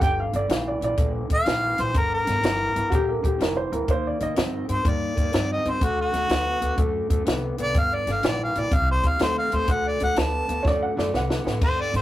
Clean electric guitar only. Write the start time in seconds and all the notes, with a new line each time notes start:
0.01 G2 D3
0.33 G2 D3
0.49 G2 E3
0.82 G2 E3
0.97 G2 D3
1.29 G2 D3
1.46 G2 E3
1.78 G2 E3
1.94 G2 D3
2.26 G2 D3
2.42 G2 E3
2.75 G2 E3
2.91 G2 D3
3.23 G2 D3
3.39 G2 E3
3.72 G2 E3
3.88 D#3 A#3
4.20 D#3 A#3
4.36 D#3 C4
4.69 D#3 C4
4.84 D#3 A#3
5.16 D#3 A#3
5.33 D#3 C4
5.65 D#3 C4
5.81 D3 A3
6.13 D3 A3
6.29 D3 B3
6.61 D3 B3
6.77 D3 A3
7.10 D3 A3
7.25 D3 B3
7.58 D3 B3
7.75 G2 D3
8.07 G2 D3
8.23 G2 E3
8.56 G2 E3
8.72 C3 G3
9.04 C3 G3
9.20 C3 A3
9.52 C3 A3
9.69 D3 A3
10.01 D3 A3
10.17 D3 B3
10.49 D3 B3
10.65 D3 A3
10.96 D3 A3
11.14 D3 B3
11.45 D3 B3
11.62 G2 D3
11.94 G2 D3